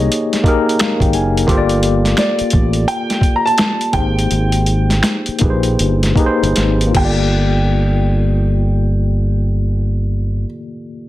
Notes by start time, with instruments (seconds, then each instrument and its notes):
Already playing: tine electric piano A#3 D#4 G4 G#4 C5 C#5 D#5
0.12 closed hi-hat
0.33 snare, closed hi-hat
0.44 tine electric piano A#3 D#4 G4 G#4, kick, closed hi-hat
0.48 tine electric piano A#4
0.69 closed hi-hat
0.79 tine electric piano F5, finger snap, snare, closed hi-hat
1.00 fingered electric bass G#1, tine electric piano G5, kick, closed hi-hat
1.13 fingered electric bass F#1, tine electric piano G#5, closed hi-hat
1.37 closed hi-hat
1.47 fingered electric bass G1, tine electric piano A#3 F4 G4 A4, kick, closed hi-hat
1.51 tine electric piano C5
1.58 tine electric piano D5
1.69 closed hi-hat
1.83 closed hi-hat
2.05 snare, closed hi-hat
2.17 grand piano D5, finger snap, snare, closed hi-hat
2.39 muted fingered electric bass stroke, closed hi-hat
2.50 fingered electric bass A1, kick, closed hi-hat
2.73 closed hi-hat
2.88 grand piano G5, closed hi-hat
3.10 snare, closed hi-hat
3.21 kick, closed hi-hat
3.36 grand piano A#5
3.46 grand piano A5, closed hi-hat
3.58 finger snap, snare, closed hi-hat
3.81 closed hi-hat
3.92 fingered electric bass G#1, tine electric piano A#3 D#4 G4 G#4, grand piano G5, kick, closed hi-hat
3.97 tine electric piano C5
4.19 closed hi-hat
4.31 fingered electric bass G#1, closed hi-hat
4.52 closed hi-hat
4.66 closed hi-hat
4.90 snare, closed hi-hat
5.03 finger snap, snare, closed hi-hat
5.26 muted fingered electric bass stroke, closed hi-hat
5.39 fingered electric bass A#1, tine electric piano A#3 D#4 G4 G#4, kick, closed hi-hat
5.44 tine electric piano B4
5.50 tine electric piano C5
5.63 closed hi-hat
5.79 fingered electric bass G1, closed hi-hat
6.03 snare, closed hi-hat
6.15 tine electric piano A#3 D#4 G4 G#4, kick, closed hi-hat
6.20 tine electric piano B4
6.26 tine electric piano C5
6.43 fingered electric bass G1, closed hi-hat
6.56 fingered electric bass G#1, snare, closed hi-hat
6.81 closed hi-hat
6.87 tine electric piano A#3
6.91 tine electric piano F4, kick, crash
6.96 fingered electric bass G1, tine electric piano G4, grand piano G5
7.00 tine electric piano A4
7.05 tine electric piano D5